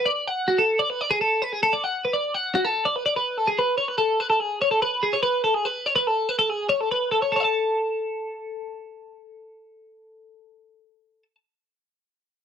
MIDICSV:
0, 0, Header, 1, 2, 480
1, 0, Start_track
1, 0, Tempo, 415800
1, 1271, Time_signature, 5, 2, 24, 8
1, 14367, End_track
2, 0, Start_track
2, 0, Title_t, "Clean electric guitar"
2, 0, Program_c, 0, 27
2, 64, Note_on_c, 0, 74, 81
2, 318, Note_off_c, 0, 74, 0
2, 318, Note_on_c, 0, 78, 88
2, 552, Note_on_c, 0, 66, 81
2, 557, Note_off_c, 0, 78, 0
2, 673, Note_off_c, 0, 66, 0
2, 675, Note_on_c, 0, 69, 83
2, 913, Note_off_c, 0, 69, 0
2, 914, Note_on_c, 0, 74, 73
2, 1037, Note_off_c, 0, 74, 0
2, 1037, Note_on_c, 0, 71, 89
2, 1165, Note_off_c, 0, 71, 0
2, 1165, Note_on_c, 0, 74, 72
2, 1277, Note_on_c, 0, 68, 100
2, 1278, Note_off_c, 0, 74, 0
2, 1393, Note_off_c, 0, 68, 0
2, 1397, Note_on_c, 0, 69, 76
2, 1639, Note_off_c, 0, 69, 0
2, 1639, Note_on_c, 0, 71, 78
2, 1762, Note_off_c, 0, 71, 0
2, 1762, Note_on_c, 0, 68, 89
2, 1874, Note_off_c, 0, 68, 0
2, 1881, Note_on_c, 0, 69, 82
2, 1993, Note_off_c, 0, 69, 0
2, 1997, Note_on_c, 0, 74, 76
2, 2122, Note_off_c, 0, 74, 0
2, 2122, Note_on_c, 0, 78, 73
2, 2352, Note_off_c, 0, 78, 0
2, 2363, Note_on_c, 0, 71, 65
2, 2464, Note_on_c, 0, 74, 80
2, 2473, Note_off_c, 0, 71, 0
2, 2706, Note_off_c, 0, 74, 0
2, 2706, Note_on_c, 0, 78, 92
2, 2943, Note_off_c, 0, 78, 0
2, 2943, Note_on_c, 0, 66, 80
2, 3054, Note_off_c, 0, 66, 0
2, 3054, Note_on_c, 0, 69, 81
2, 3294, Note_on_c, 0, 74, 71
2, 3296, Note_off_c, 0, 69, 0
2, 3415, Note_off_c, 0, 74, 0
2, 3415, Note_on_c, 0, 71, 80
2, 3525, Note_off_c, 0, 71, 0
2, 3530, Note_on_c, 0, 74, 75
2, 3648, Note_off_c, 0, 74, 0
2, 3653, Note_on_c, 0, 71, 76
2, 3898, Note_off_c, 0, 71, 0
2, 3898, Note_on_c, 0, 69, 73
2, 4012, Note_on_c, 0, 68, 69
2, 4018, Note_off_c, 0, 69, 0
2, 4134, Note_off_c, 0, 68, 0
2, 4140, Note_on_c, 0, 71, 79
2, 4355, Note_off_c, 0, 71, 0
2, 4360, Note_on_c, 0, 73, 65
2, 4482, Note_off_c, 0, 73, 0
2, 4482, Note_on_c, 0, 71, 66
2, 4590, Note_off_c, 0, 71, 0
2, 4595, Note_on_c, 0, 69, 72
2, 4849, Note_off_c, 0, 69, 0
2, 4849, Note_on_c, 0, 71, 69
2, 4956, Note_off_c, 0, 71, 0
2, 4961, Note_on_c, 0, 69, 62
2, 5080, Note_off_c, 0, 69, 0
2, 5080, Note_on_c, 0, 68, 72
2, 5323, Note_off_c, 0, 68, 0
2, 5328, Note_on_c, 0, 73, 65
2, 5434, Note_off_c, 0, 73, 0
2, 5439, Note_on_c, 0, 69, 67
2, 5562, Note_off_c, 0, 69, 0
2, 5567, Note_on_c, 0, 71, 73
2, 5805, Note_on_c, 0, 68, 72
2, 5812, Note_off_c, 0, 71, 0
2, 5923, Note_on_c, 0, 73, 69
2, 5931, Note_off_c, 0, 68, 0
2, 6029, Note_off_c, 0, 73, 0
2, 6034, Note_on_c, 0, 71, 79
2, 6275, Note_off_c, 0, 71, 0
2, 6280, Note_on_c, 0, 69, 68
2, 6398, Note_off_c, 0, 69, 0
2, 6398, Note_on_c, 0, 68, 63
2, 6524, Note_off_c, 0, 68, 0
2, 6524, Note_on_c, 0, 71, 76
2, 6766, Note_off_c, 0, 71, 0
2, 6766, Note_on_c, 0, 73, 62
2, 6871, Note_off_c, 0, 73, 0
2, 6876, Note_on_c, 0, 71, 66
2, 7010, Note_off_c, 0, 71, 0
2, 7010, Note_on_c, 0, 69, 76
2, 7259, Note_off_c, 0, 69, 0
2, 7259, Note_on_c, 0, 71, 71
2, 7369, Note_off_c, 0, 71, 0
2, 7373, Note_on_c, 0, 69, 66
2, 7499, Note_off_c, 0, 69, 0
2, 7499, Note_on_c, 0, 68, 76
2, 7721, Note_off_c, 0, 68, 0
2, 7725, Note_on_c, 0, 73, 71
2, 7858, Note_off_c, 0, 73, 0
2, 7858, Note_on_c, 0, 69, 69
2, 7978, Note_off_c, 0, 69, 0
2, 7982, Note_on_c, 0, 71, 66
2, 8209, Note_off_c, 0, 71, 0
2, 8214, Note_on_c, 0, 69, 70
2, 8332, Note_off_c, 0, 69, 0
2, 8337, Note_on_c, 0, 73, 65
2, 8450, Note_on_c, 0, 69, 59
2, 8460, Note_off_c, 0, 73, 0
2, 8498, Note_on_c, 0, 73, 62
2, 8544, Note_off_c, 0, 73, 0
2, 8544, Note_on_c, 0, 76, 66
2, 8590, Note_off_c, 0, 76, 0
2, 8594, Note_on_c, 0, 81, 61
2, 12958, Note_off_c, 0, 69, 0
2, 13102, Note_off_c, 0, 81, 0
2, 14367, End_track
0, 0, End_of_file